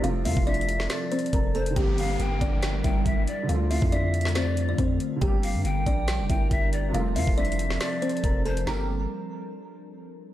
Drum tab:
HH |x-----o-----x-x-x-x-----x-----x-x-x-x-----x--x--|x-----o-----x-----x-----x-----x-----x-----x-----|x-----o-----x-----x-x-x-x-----x-----x-----x-----|x-----o-----x-----x-----x-----x-----x-----x-----|
SD |---------------------o--o-----------------------|------------------------o-----------------------|---------------------o--o-----------------------|------------------------o-----------------------|
BD |---------o--------------------------o-----------|o-----------------o-----------o-----o-----------|---------o--------------------------o-----------|o-----------------o-----------o-----o-----------|

HH |x-----o-----x-x-x-x-----x-----x-x-x-x-----x--x--|------------------------------------------------|
SD |---------------------o--o-----------------------|o-----------------------------------------------|
BD |---------o--------------------------o-----------|------------------------------------------------|